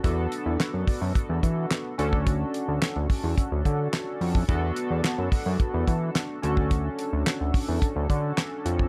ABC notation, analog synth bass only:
X:1
M:4/4
L:1/16
Q:1/4=108
K:D
V:1 name="Analog synth bass" clef=bass
E,,2 z E,, z F,, z F,, z E,, E,2 z2 D,,2- | D,,2 z D,, z D,, z E,, z D,, D,2 z2 ^E,,2 | E,,2 z E,, z F,, z F,, z E,, E,2 z2 D,,2- | D,,2 z D,, z D,, z E,, z D,, D,2 z2 ^E,,2 |]